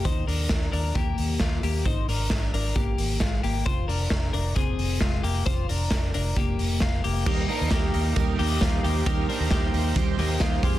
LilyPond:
<<
  \new Staff \with { instrumentName = "Synth keys" } { \time 4/4 \key ees \major \tempo 4 = 133 r1 | r1 | r1 | r1 |
<ees' g' bes'>8 <ees' g' bes'>8 <ees' g' bes'>8 <ees' g' bes'>8 <ees' g' bes'>8 <ees' g' bes'>8 <ees' g' c''>8 <ees' g' bes'>8 | <ees' g' bes'>8 <ees' g' c''>8 <ees' g' c''>8 <ees' g' c''>8 <ees' g' c''>8 <ees' g' c'' ees''>8 <ees' g' c'' g''>8 <f' aes' c'' aes''>8 | }
  \new Staff \with { instrumentName = "Clean electric guitar" } { \time 4/4 \key ees \major <ees' c''>8 <d' bes'>4 <d' bes'>8 <bes g'>4 <bes f'>8 <bes g'>8 | <ees' c''>8 <d' bes'>4 <d' bes'>8 <bes g'>4 <aes f'>8 <bes g'>8 | <f' c''>8 <d' bes'>4 <d' bes'>8 <c' aes'>4 <aes f'>8 <bes g'>8 | <f' c''>8 <d' bes'>4 <d' bes'>8 <bes g'>4 <bes f'>8 <bes g'>8 |
<bes g'>8 <d' bes'>8 <bes g'>4. <bes g'>8 <bes f'>8 <bes g'>8 | <bes g'>8 <d' bes'>8 <bes g'>4. <bes g'>8 <bes f'>8 <c' g'>8 | }
  \new Staff \with { instrumentName = "Clean electric guitar" } { \time 4/4 \key ees \major r1 | r1 | r1 | r1 |
<ees g bes ees' g'>8 <bes ees' g'>8 <g bes ees' g'>8 <bes ees' g'>8 <ees g bes ees' g'>8 <bes ees' g'>8 <g bes ees' g'>8 <bes ees' g'>8 | <ees g bes ees' g'>8 <bes ees' g'>8 <g bes ees' g'>8 <bes ees' g'>8 <ees g bes ees' g'>8 <bes ees' g'>8 <g bes ees' g'>8 <f aes c' aes'>8 | }
  \new Staff \with { instrumentName = "Fingered electric bass" } { \clef bass \time 4/4 \key ees \major ees,8 ees,8 r8 ees,8 ees,8 ees,8 ees,8 ees,8 | aes,,8 aes,,8 r8 aes,,8 aes,,8 aes,,8 aes,,8 aes,,8 | f,,8 f,,8 f,,8 f,,8 f,,8 f,,8 f,,8 f,,8 | f,,8 f,,8 r8 f,,8 f,,8 f,,8 r8 f,,8 |
ees,8 r16 ees,16 ees,8 ees,8 r8 ees,8 ees,8 ees,8 | ees,8 r16 ees,16 r8 ees,8 ees,8 ees,8 ees,8 f,8 | }
  \new DrumStaff \with { instrumentName = "Drums" } \drummode { \time 4/4 <hh bd>8 hho8 <hh bd sn>8 hho8 <hh bd>8 hho8 <hh bd sn>8 hho8 | <hh bd>8 hho8 <hh bd sn>8 hho8 <hh bd>8 hho8 <hh bd sn>8 hho8 | <hh bd>8 hho8 <hh bd sn>8 hho8 <hh bd>8 hho8 <hh bd sn>8 hho8 | <hh bd>8 hho8 <hh bd sn>8 hho8 <hh bd>8 hho8 <hh bd sn>8 hho8 |
<cymc bd>8 hho8 <hhp bd cymr sn>8 hho8 <hhp bd cymr>8 hho8 <hhp bd cymr sn>8 hho8 | <hhp bd cymr>8 hho8 <hhp bd cymr sn>8 hho8 <hhp bd cymr>8 hho8 <hhp bd cymr sn>8 <hho bd>8 | }
>>